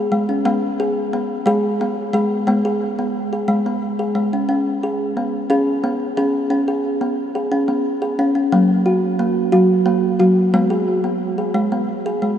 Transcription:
0.00 0.29 G#4 medium
0.12 0.42 G#3 medium
0.29 0.46 C#4 medium
0.45 1.43 G#3 medium
0.45 0.79 B3 medium
0.80 1.13 G#4 medium
1.13 1.47 B3 medium
1.46 2.10 G#3 medium
1.46 1.81 G#4 loud
1.81 2.14 B3 medium
2.13 2.44 G#3 medium
2.13 2.48 G#4 medium
2.47 3.44 G#3 medium
2.47 2.65 B3 medium
2.65 2.98 G#4 medium
2.99 3.32 B3 medium
3.33 3.66 G#4 medium
3.48 4.12 G#3 loud
3.66 3.99 B3 medium
3.99 4.33 G#4 medium
4.15 4.46 G#3 medium
4.33 4.48 C#4 medium
4.49 5.46 C#4 medium
4.83 5.17 G#4 medium
5.17 5.50 B3 medium
5.50 6.13 C#4 medium
5.50 5.84 G#4 medium
5.84 6.17 B3 medium
6.17 6.48 C#4 medium
6.17 6.51 G#4 medium
6.50 6.67 C#4 medium
6.68 7.01 G#4 medium
7.01 7.35 B3 medium
7.35 7.69 G#4 medium
7.52 8.15 C#4 medium
7.68 8.02 B3 medium
8.02 8.36 G#4 medium
8.19 8.34 C#4 medium
8.35 8.52 C#4 medium
8.52 9.49 F#3 loud
8.52 8.86 A#3 medium
8.86 9.19 F#4 medium
9.19 9.53 A#3 medium
9.52 10.16 F#3 medium
9.52 9.86 F#4 medium
9.86 10.20 A#3 medium
10.20 10.50 F#3 medium
10.20 10.53 F#4 medium
10.54 11.50 G#3 medium
10.54 10.71 B3 medium
10.70 11.04 G#4 medium
11.04 11.38 B3 medium
11.38 11.71 G#4 medium
11.54 12.18 G#3 medium
11.72 12.05 B3 medium
12.06 12.38 G#4 medium
12.22 12.38 G#3 medium

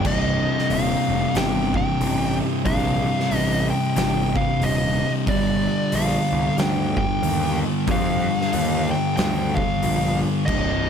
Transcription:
0.04 0.45 C1 loud
0.04 1.34 C2 medium
0.04 1.34 G2 medium
0.04 1.37 C3 loud
0.04 5.22 C4 medium
0.04 5.22 G4 medium
0.04 5.23 D#5 medium
0.04 0.73 D#5 medium
0.04 kick loud
0.04 crash loud
0.59 snare soft
0.70 0.94 D#1 medium
0.70 1.37 F5 loud
0.70 open hi-hat medium
1.08 1.25 F1 medium
1.34 1.74 G1 loud
1.34 2.63 C2 medium
1.34 2.64 G2 medium
1.34 2.65 C3 medium
1.34 1.76 G5 loud
1.34 snare loud
1.34 open hi-hat medium
1.74 2.37 G5 loud
1.74 kick medium
2.01 2.40 A1 loud
2.01 open hi-hat medium
2.64 3.05 A#1 loud
2.64 3.94 C2 medium
2.64 3.95 G2 loud
2.64 3.95 C3 medium
2.64 3.37 F5 loud
2.64 kick loud
2.64 open hi-hat medium
3.20 snare soft
3.31 3.71 A1 medium
3.31 open hi-hat medium
3.37 3.66 D#5 loud
3.70 3.94 G5 loud
3.96 4.36 G1 loud
3.96 5.25 C2 medium
3.96 5.25 G2 medium
3.96 5.26 C3 medium
3.96 4.37 G5 loud
3.96 snare loud
3.96 open hi-hat medium
4.36 4.63 F5 loud
4.36 kick loud
4.61 5.01 D#1 loud
4.61 5.11 D#5 loud
4.61 open hi-hat medium
5.27 5.67 G1 medium
5.27 6.56 G2 medium
5.27 6.56 D3 loud
5.27 10.44 G3 medium
5.27 6.58 G3 loud
5.27 10.44 D4 medium
5.27 10.44 A4 medium
5.27 5.95 D5 medium
5.27 kick loud
5.27 open hi-hat medium
5.92 6.16 A#1 medium
5.92 6.55 F5 loud
5.92 open hi-hat medium
6.32 6.48 C2 medium
6.56 6.98 D2 loud
6.56 7.86 G2 medium
6.56 7.86 D3 medium
6.56 7.89 G3 loud
6.56 6.97 G5 loud
6.56 snare loud
6.56 open hi-hat medium
6.97 7.58 G5 medium
6.97 kick loud
7.23 7.62 D#2 medium
7.23 open hi-hat medium
7.87 8.27 F2 medium
7.87 9.15 G2 medium
7.87 9.16 D3 medium
7.87 9.18 G3 loud
7.87 kick loud
7.87 open hi-hat medium
7.91 8.90 F5 medium
8.41 snare soft
8.53 8.93 D#2 loud
8.53 open hi-hat medium
8.91 9.15 G5 loud
9.16 9.58 D2 loud
9.16 10.45 G2 medium
9.16 10.46 D3 medium
9.16 10.49 G3 medium
9.16 9.55 G5 loud
9.16 snare loud
9.16 open hi-hat medium
9.55 10.17 F5 medium
9.55 kick medium
9.83 10.23 A#1 loud
9.83 open hi-hat medium
10.46 10.87 C1 loud
10.46 10.90 C2 medium
10.46 10.90 G2 loud
10.46 10.90 C4 medium
10.46 10.90 G4 medium
10.46 10.90 D#5 medium
10.46 kick loud
10.46 crash loud
10.50 10.90 C3 loud

